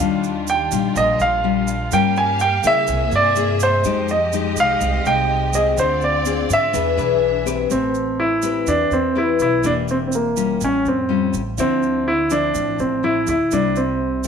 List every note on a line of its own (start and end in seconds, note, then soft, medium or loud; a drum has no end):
0.00 0.67 D#2 medium
0.00 0.93 D#3 medium
0.00 0.47 G3 medium
0.00 1.90 G3 medium
0.00 1.88 D4 medium
0.00 0.47 D4 soft
0.00 1.90 F4 medium
0.00 0.48 F4 medium
0.00 0.20 F5 medium
0.24 shaker soft
0.47 0.98 G5 medium
0.47 shaker medium
0.72 0.94 A#1 medium
0.72 1.40 G3 medium
0.72 1.40 D4 medium
0.72 1.40 F4 medium
0.72 shaker medium
0.96 1.18 A#1 loud
0.96 1.89 A#2 medium
0.96 1.21 D#5 loud
0.96 shaker medium
1.20 1.88 A#1 medium
1.20 1.95 F5 loud
1.20 shaker soft
1.44 1.75 G3 medium
1.44 1.75 D4 medium
1.44 1.75 F4 medium
1.67 shaker medium
1.91 2.60 G2 medium
1.91 2.86 G3 medium
1.91 3.82 A#3 medium
1.91 2.40 C#4 medium
1.91 2.40 F4 medium
1.91 2.87 G4 medium
1.91 2.40 A#4 medium
1.91 2.87 F5 medium
1.91 2.17 G5 loud
1.91 shaker medium
2.16 2.41 G#5 medium
2.16 shaker soft
2.40 2.65 G5 loud
2.40 shaker medium
2.63 2.86 C#3 medium
2.63 3.33 A#3 medium
2.63 3.33 E4 medium
2.63 3.33 G#4 medium
2.63 3.15 E5 loud
2.63 shaker medium
2.87 3.10 C2 loud
2.87 3.82 C3 medium
2.87 3.83 G#4 medium
2.87 3.83 E5 medium
2.87 shaker medium
3.12 3.80 G2 medium
3.12 3.63 D5 loud
3.12 shaker soft
3.36 3.67 A#3 medium
3.36 3.68 E4 medium
3.36 3.68 G#4 medium
3.36 shaker soft
3.60 4.06 C5 loud
3.60 shaker medium
3.84 4.53 F2 medium
3.84 4.78 F3 medium
3.84 5.75 G#3 medium
3.84 4.16 G#3 medium
3.84 4.16 D#4 medium
3.84 5.75 G4 medium
3.84 4.16 G4 medium
3.84 5.75 D#5 medium
3.84 shaker medium
4.08 4.55 D#5 medium
4.08 shaker soft
4.33 5.01 G#3 medium
4.33 5.01 D#4 medium
4.33 5.01 G4 medium
4.33 shaker medium
4.56 4.79 C2 medium
4.56 5.08 F5 loud
4.56 shaker medium
4.81 5.03 C2 loud
4.81 5.75 C3 medium
4.81 shaker medium
5.05 5.73 C2 medium
5.05 5.50 G#3 medium
5.05 5.50 D#4 medium
5.05 5.50 G4 medium
5.05 5.51 G5 loud
5.05 shaker soft
5.53 6.22 C4 medium
5.53 6.22 F4 medium
5.53 6.22 G#4 medium
5.53 5.79 D#5 medium
5.53 shaker medium
5.77 6.45 D2 medium
5.77 6.71 D3 medium
5.77 6.73 C4 medium
5.77 6.72 F4 medium
5.77 6.03 C5 medium
5.77 6.72 D5 medium
5.77 shaker medium
6.01 6.52 D5 medium
6.01 shaker soft
6.25 6.58 C4 medium
6.25 6.58 F4 medium
6.25 6.58 G#4 medium
6.25 shaker medium
6.50 6.72 G#2 medium
6.50 7.44 E5 medium
6.50 shaker medium
6.72 6.96 E2 medium
6.72 7.68 E3 medium
6.72 7.69 D4 medium
6.72 6.88 D4 medium
6.72 7.69 G#4 medium
6.72 6.88 G#4 medium
6.72 6.88 B4 medium
6.72 7.69 E5 medium
6.72 shaker medium
6.97 7.66 B1 medium
6.97 7.42 D4 medium
6.97 7.42 G#4 medium
6.97 7.42 B4 medium
6.97 shaker soft
7.46 8.15 C4 medium
7.46 8.15 G4 medium
7.46 8.15 B4 medium
7.46 shaker medium
7.70 8.63 A1 medium
7.70 8.64 A3 soft
7.70 8.21 C4 medium
7.70 shaker medium
7.95 shaker soft
8.20 8.69 E4 medium
8.42 9.11 C4 medium
8.42 9.12 G4 medium
8.42 9.12 B4 medium
8.42 shaker medium
8.67 8.89 E2 medium
8.67 9.61 E3 medium
8.67 8.92 D4 medium
8.67 shaker medium
8.91 9.36 E2 medium
8.91 9.17 C4 medium
8.91 shaker soft
9.15 9.60 C4 medium
9.15 9.40 E4 medium
9.15 9.60 G4 medium
9.15 9.60 B4 medium
9.39 9.62 B1 medium
9.39 9.63 E4 medium
9.39 shaker medium
9.63 10.57 E1 medium
9.63 10.58 E3 medium
9.63 10.12 A#3 soft
9.63 10.12 D4 soft
9.63 9.71 D4 medium
9.63 10.12 G4 medium
9.63 shaker medium
9.88 9.96 C4 medium
9.88 shaker soft
10.07 10.13 C4 medium
10.12 10.59 A#3 medium
10.12 shaker soft
10.36 11.05 G3 medium
10.36 11.05 C#4 medium
10.36 11.05 F4 medium
10.36 shaker medium
10.61 10.83 A1 medium
10.61 11.55 A2 soft
10.61 10.85 C#4 medium
10.61 shaker medium
10.85 11.30 F2 medium
10.85 11.32 C4 medium
10.85 shaker soft
11.09 11.40 G3 medium
11.09 11.41 C#4 medium
11.09 11.41 F4 medium
11.33 11.56 A1 medium
11.33 shaker medium
11.58 12.50 D2 medium
11.58 12.52 D3 medium
11.58 12.06 F3 medium
11.58 12.06 C4 soft
11.58 12.09 C4 medium
11.58 12.06 E4 medium
11.58 shaker medium
11.82 shaker soft
12.08 12.32 E4 medium
12.30 12.99 F3 soft
12.30 12.99 C4 medium
12.30 12.76 D4 medium
12.30 13.00 E4 medium
12.30 shaker medium
12.54 12.77 A1 medium
12.54 13.49 A2 soft
12.54 shaker medium
12.79 13.24 A1 medium
12.79 13.02 C4 medium
12.79 shaker soft
13.03 13.34 F3 soft
13.03 13.34 C4 soft
13.03 13.34 E4 medium
13.03 13.27 E4 medium
13.27 13.50 D2 medium
13.27 13.53 E4 medium
13.27 shaker medium
13.51 14.28 C2 medium
13.51 14.28 C3 medium
13.51 14.20 G3 soft
13.51 14.20 A#3 soft
13.51 13.77 D4 medium
13.51 14.21 E4 soft
13.51 shaker soft
13.76 14.28 C4 medium
13.76 shaker soft
14.24 14.28 G3 medium
14.24 shaker medium